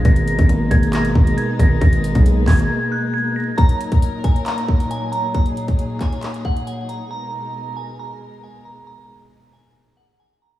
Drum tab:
HH |xxxxx-xxxx-xx-x-|xxxxx-ox--------|xxxxx-xxxx-xx-x-|xxxxx-xxxx-xx-x-|
CP |--------x-------|------x---------|--------x-------|------x-x-------|
BD |o--o--o---o---o-|o--o--o---------|o--o--o---o-----|o--o--o---o-----|

HH |----------------|----------------|
CP |----------------|----------------|
BD |----------------|----------------|